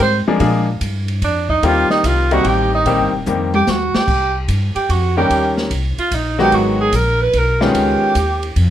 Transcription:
0.00 G#2 C5, kick, ride
0.27 F3 G#3 A#3 D4 G#4, muted upright bass stroke
0.40 A#2 F3 G#3 A#3 D4 G#4, kick, ride
0.81 G2, kick, hi-hat pedal, ride
1.08 ride
1.22 F2 D4, kick, ride
1.49 D#4, kick
1.63 D#2 D#3 G3 A#3 C4 F4 G4, kick, ride
1.90 D#4, muted upright bass stroke, snare
2.04 C2 F4, kick, hi-hat pedal, ride
2.31 D#3 G3 A#3 C4 D#4 F#4, ride
2.44 A1 G4, kick, ride
2.75 D#4
2.85 A#1 D#3 G3 A#3 C4 G4, kick, ride
2.99 G1
3.13 D#1
3.26 F2 D#3 G3 A#3 C4 G4, hi-hat pedal, high tom
3.54 G4, high tom
3.67 D#2 F#4, snare, hi-hat pedal
3.95 G4, muted upright bass stroke, snare
4.08 C2, kick, crash
4.48 G2, kick, hi-hat pedal, ride
4.76 G4, muted upright bass stroke, ride
4.89 F2 F#4, kick, ride
5.17 D#3 G3 A#3 C#4 G4
5.30 D#2, kick, ride
5.58 snare
5.71 C2, kick, ride
5.98 F4, muted upright bass stroke, ride
6.11 A#1 D#4, kick, hi-hat pedal, ride
6.39 D#3 F#3 G#3 B3 F#4 G4, snare
6.52 G#1 F#4, kick, ride
6.81 G#4
6.92 A#1 A#4, kick, hi-hat pedal, ride
7.21 B4
7.33 B1, kick, ride
7.38 A#4
7.61 D#3 G#3 B3 C#4 F4 G4, snare
7.75 C#2, kick, ride
8.02 muted upright bass stroke
8.15 D#2, kick, hi-hat pedal, ride
8.43 ride
8.56 F2, kick, ride

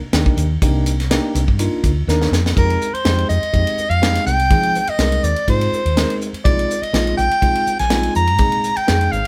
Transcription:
0.13 D#2 A#3 D4 D#4 G4, snare, hi-hat pedal, ride
0.26 kick
0.37 D#2, hi-hat pedal, ride
0.62 C2 A#3 D4 D#4 G4, kick, hi-hat pedal, ride
0.86 hi-hat pedal, ride
1.00 snare, ride
1.10 A#3 D4 D#4 G4, snare, hi-hat pedal, ride
1.35 C2, hi-hat pedal, ride
1.48 G2, kick
1.59 A#3 D4 D#4 F4, hi-hat pedal, ride
1.84 D2, kick, hi-hat pedal, ride
2.07 D#2 A#3 D4 D#4 A#4, snare, hi-hat pedal
2.22 snare
2.31 F2, snare, hi-hat pedal
2.46 snare
2.56 F2 G#3 C4 D#4 G4 A#4, kick, ride
2.70 ride
2.81 hi-hat pedal
2.93 C5, muted fretless electric bass stroke, ride
3.05 F2 G#3 C4 D#4 G4, snare, ride
3.18 ride
3.29 F2 D#5, hi-hat pedal
3.43 muted fretless electric bass stroke, ride
3.53 F2 G#3 C4 D#4 G4, kick, ride
3.67 ride
3.78 muted fretless electric bass stroke, hi-hat pedal
3.90 F2 F5, ride
4.02 G#3 C4 D#4 G4, snare, ride
4.15 snare, ride
4.26 C2 G5, hi-hat pedal
4.39 ride
4.50 F3 G#3 C4 D#4 G#4, kick, ride
4.63 ride
4.75 hi-hat pedal
4.87 D#5, muted fretless electric bass stroke, ride
4.98 C2 G#3 C4 D#4 A#4, snare, ride
5.12 ride
5.23 D#2 D5, hi-hat pedal
5.36 ride
5.47 G#2 G#3 C4 D#4 F4 C5, kick, ride
5.61 ride
5.72 muted fretless electric bass stroke, hi-hat pedal
5.85 D#2, ride
5.96 G#3 C4 D#4 A#4, snare, ride
6.10 ride
6.21 hi-hat pedal
6.33 muted fretless electric bass stroke, ride
6.44 A#1 G#3 C4 D#4 F4 D5, kick, ride
6.59 ride
6.70 hi-hat pedal
6.82 D#5, muted fretless electric bass stroke, ride
6.93 A#1 G#3 C4 D#4 F4, snare, ride
7.07 ride
7.17 A#1 G5, hi-hat pedal
7.31 ride
7.42 A#1 G#3 C4 D#4 F4, kick, ride
7.55 ride
7.67 muted fretless electric bass stroke, hi-hat pedal
7.79 A#1 G#5, snare, ride
7.90 G#3 C4 D#4 F4, snare, ride
8.03 ride
8.15 F2 A#5, hi-hat pedal
8.27 ride
8.38 A#2 G#3 C4 D#4 G#4, kick, ride
8.52 ride
8.63 hi-hat pedal
8.76 G5, muted fretless electric bass stroke, ride
8.87 F2 G#3 C4 D#4 G#4, snare, ride
9.01 ride
9.12 G#1 F5, hi-hat pedal

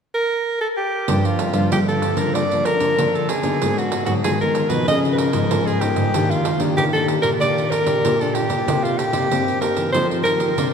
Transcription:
0.14 A#4
0.61 A4
0.77 G4
1.08 G2 F3 A#3 D4, pandeiro
1.25 F4, pandeiro
1.39 pandeiro
1.53 G2 F3 A#3 D4 F4, pandeiro
1.71 D3 G3 G4, pandeiro
1.88 A4, pandeiro
2.02 F3 A#3 D4, pandeiro
2.17 D3 A#4, pandeiro
2.34 G2 D5, pandeiro
2.51 F3 A#3 D4, pandeiro
2.65 A#4, pandeiro
2.80 D3, pandeiro
2.98 D3 F3 A#3 D4, pandeiro
3.15 A4, pandeiro
3.29 G#4, pandeiro
3.43 D3 F#3 B3 D#4, pandeiro
3.62 G#2, pandeiro
3.78 F#4, pandeiro
3.92 pandeiro
4.06 G#2 F#3 B3 D#4 F#4, pandeiro
4.24 D#3 G#3 G#4, pandeiro
4.41 F#3 B3 D#4 A#4, pandeiro
4.55 pandeiro
4.69 B2 F3 B3 D#4 B4, pandeiro
4.88 C#3 D#5, pandeiro
5.05 pandeiro
5.13 B4
5.18 A#4, pandeiro
5.33 G#2 F3 B3 D#4, pandeiro
5.51 G#2, pandeiro
5.66 G#4, pandeiro
5.80 F3 B3 D#4 G4, pandeiro
5.96 G#2, pandeiro
6.14 D#3 A#3 D4 G4, pandeiro
6.31 F4, pandeiro
6.45 pandeiro
6.60 D#3 A#3 D4 G4, pandeiro
6.77 A#2 D#3 G4, pandeiro
6.93 A#3 D4 G4 A4, pandeiro
7.08 pandeiro
7.22 A#2 A#4, pandeiro
7.40 D#3 A#3 D4 G4 D5, pandeiro
7.58 pandeiro
7.71 A#4, pandeiro
7.86 A#2 A#3 D4 G4, pandeiro
8.05 A#2, pandeiro
8.21 A#3 D4 G4 A4, pandeiro
8.34 G4, pandeiro
8.49 A#2, pandeiro
8.68 C3 A#3 D#4 G4, pandeiro
8.84 F4, pandeiro
8.98 G4, pandeiro
9.13 C3 A#3 D#4 G4, pandeiro
9.30 G2 C4, pandeiro
9.48 pandeiro
9.61 A#3 D#4 G4 A#4, pandeiro
9.77 E3, pandeiro
9.92 F3 C4 D#4 A4 C5, pandeiro
10.11 C4 D#4 A4, pandeiro
10.23 D#3 A#4, pandeiro
10.40 pandeiro
10.57 C3 D3 C4 A4, pandeiro

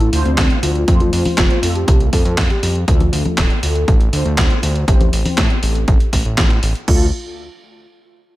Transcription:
0.00 E4, closed hi-hat
0.13 D2 A3 D4 F4 C5, open hi-hat
0.25 D2 C4, closed hi-hat
0.38 D2, kick, snare, clap, closed hi-hat
0.50 closed hi-hat
0.63 D2 F4, open hi-hat
0.75 closed hi-hat
0.88 F2 A3 C4 F4 C5, kick, closed hi-hat
1.00 F4, closed hi-hat, high conga
1.13 F2, open hi-hat
1.25 open hi-hat, high conga
1.38 F1 F4, kick, snare, clap, closed hi-hat
1.50 closed hi-hat
1.63 F2 A3 C4 F4 A4, open hi-hat
1.75 G4, closed hi-hat
1.88 C2, kick, closed hi-hat
2.00 closed hi-hat
2.13 F2 A4, kick, open hi-hat
2.25 F2, closed hi-hat
2.38 F2, kick, snare, clap, closed hi-hat
2.50 G4, snare, closed hi-hat
2.63 F2, open hi-hat
2.75 closed hi-hat
2.88 D2 A3 D4 F4 A4, kick, closed hi-hat
3.00 closed hi-hat, high conga
3.13 D2, open hi-hat
3.25 closed hi-hat, high conga
3.38 D1, kick, snare, clap, closed hi-hat
3.50 closed hi-hat
3.63 D2 A3 D4 F4 A4, open hi-hat
3.75 closed hi-hat
3.88 A1, kick, closed hi-hat
4.01 closed hi-hat
4.13 D2 A3 D4 F4 C5, open hi-hat
4.25 D2, closed hi-hat
4.38 D2, kick, snare, clap, closed hi-hat
4.50 closed hi-hat
4.63 D2, open hi-hat
4.76 closed hi-hat
4.88 A1 C4 E4 G4 C5, kick, closed hi-hat
5.01 closed hi-hat, high conga
5.13 A1, open hi-hat
5.25 open hi-hat, high conga
5.38 A2, kick, snare, clap, closed hi-hat
5.50 closed hi-hat
5.63 A1 C4 E4 G4 A4, open hi-hat
5.75 closed hi-hat
5.88 A1, kick, closed hi-hat
6.00 closed hi-hat
6.13 A1, kick, open hi-hat
6.25 A1, closed hi-hat
6.38 A1, kick, snare, clap, closed hi-hat
6.50 snare, closed hi-hat
6.63 A1, open hi-hat
6.75 closed hi-hat
6.88 D2 A3 D4 F4 A4, kick, crash

